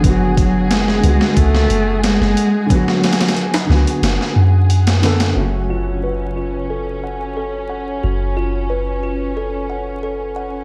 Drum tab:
HH |x---x---x---x---x---x---x---x---|x---xxxxx-x---x-x-------x-x-x-x-|--------------------------------|--------------------------------|
SD |--------o-o---o---o-----o-o-----|--o-oooo--o-o---o-o-------o-o-o-|--------------------------------|--------------------------------|
BD |o---o-----------o---------------|o-------------------------------|--------------------------------|--------------------------------|